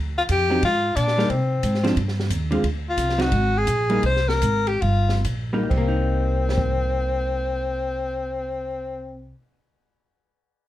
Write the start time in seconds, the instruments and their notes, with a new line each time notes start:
Already playing: upright bass D2
0.18 tenor saxophone F4
0.29 upright bass F2, tenor saxophone G4, kick, hi-hat pedal, ride
0.50 hollow-body jazz guitar F#3 C4 D#4
0.62 upright bass G#2, tenor saxophone F4, kick, ride
0.96 upright bass A#2, tenor saxophone D4, kick, hi-hat pedal, ride
1.08 snare
1.18 hollow-body jazz guitar G3 A#3 D#4, snare
1.30 upright bass C3, tenor saxophone C4, kick, ride
1.63 upright bass G#2, kick, hi-hat pedal, ride
1.74 snare
1.84 hollow-body jazz guitar F3 C4 D4, snare, ride
1.96 upright bass G2, kick, ride
2.08 snare
2.20 snare
2.30 upright bass D#2, kick, hi-hat pedal, ride
2.51 hollow-body jazz guitar D3 G#3 C4 F4, ride
2.64 upright bass D2, kick, ride
2.89 tenor saxophone F4
2.97 upright bass C2, kick, hi-hat pedal, ride
3.09 snare
3.18 hollow-body jazz guitar F#3 C4 D#4, tenor saxophone F#4, snare, ride
3.32 upright bass G#1, kick, ride
3.58 tenor saxophone G#4
3.67 upright bass A#1, kick, hi-hat pedal, ride
3.90 hollow-body jazz guitar G3 A#3 D#4, ride
4.03 upright bass C2, tenor saxophone C5, kick, ride
4.16 snare
4.28 tenor saxophone A#4, snare
4.41 upright bass G#1, kick, hi-hat pedal, ride
4.67 tenor saxophone G4, ride
4.82 upright bass G1, tenor saxophone F4, kick, ride
5.09 snare
5.25 upright bass A#1, kick, hi-hat pedal, ride
5.53 hollow-body jazz guitar G3 A#3 D#4
5.63 hollow-body jazz guitar G3
5.70 upright bass C2, tenor saxophone C4, kick, crash
5.78 hollow-body jazz guitar A#3
5.88 hollow-body jazz guitar D#4
6.49 snare
6.58 kick